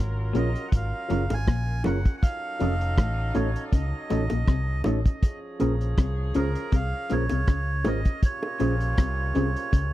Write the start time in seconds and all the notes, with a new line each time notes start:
Already playing: G#1 G#2 F#3 F4 A#4
0.33 A#1 A#2 C#4 F4 G#4 A#4 C#5, closed hi-hat
0.38 D#5
0.56 closed hi-hat
0.68 F#5
0.72 G#1 G#2, kick, closed hi-hat
0.76 F5
1.09 F#1 F#2 C#4 F4 G#4 A#4 C#5, closed hi-hat, high bongo
1.30 G#1 G#2 G#5, closed hi-hat, high bongo
1.48 A#1 A#2, kick, cross-stick, closed hi-hat
1.84 F#1 F#2 C#4 F4 G#4 A#4 C#5 F#5, closed hi-hat, high bongo, low bongo
2.05 kick, closed hi-hat
2.18 F#5
2.22 F#3 D#4 A4 F5, kick, closed hi-hat
2.59 F1 F2 C#4 D#4 F#4 A4 C#5, closed hi-hat
2.81 closed hi-hat
2.98 A1 A2, kick, cross-stick, closed hi-hat
3.34 A1 A2 C#4 D#4 F#4 A4 C#5, closed hi-hat
3.56 closed hi-hat
3.67 D5
3.73 C#2 C#3 D#5, kick, closed hi-hat
4.10 A1 A2 C#4 D#4 F#4 A4 C#5, closed hi-hat, high bongo
4.30 A#1 A#2, closed hi-hat, high bongo
4.47 C2 C3, kick, cross-stick, closed hi-hat
4.84 A1 A2 C#4 D#4 F#4 A4 C#5, closed hi-hat, high bongo, low bongo
5.06 kick, closed hi-hat
5.23 F3 G#4 C#5, kick, closed hi-hat
5.60 A#1 A#2 C#4 F4 G#4 A#4 C5, closed hi-hat
5.81 closed hi-hat
5.98 C2 C3, kick, cross-stick, closed hi-hat
6.34 C#2 C#3 C#4 F4 G#4 A#4 C5, closed hi-hat
6.55 closed hi-hat
6.72 C2 C3 F5, kick, closed hi-hat
7.09 A#1 A#2 C#4 F4 G#4 A#4 C5 C#5, closed hi-hat, high bongo
7.29 C2 C3, closed hi-hat, high bongo
7.47 C#2 C#3, kick, cross-stick, closed hi-hat
7.84 G#1 G#2 C#4 F4 G#4 A#4 C5 D#5, closed hi-hat, high bongo, low bongo
8.05 kick, closed hi-hat
8.22 A#2 C3 F4 C#5, kick, closed hi-hat
8.43 high bongo
8.59 A#1 A#2 C#4 F4 G#4 C5, closed hi-hat, high bongo
8.81 closed hi-hat
8.98 C2 C3, kick, cross-stick, closed hi-hat
9.34 C2 C3 C#4 F4 G#4 C5, closed hi-hat
9.56 closed hi-hat
9.73 C#2 C#3, kick, closed hi-hat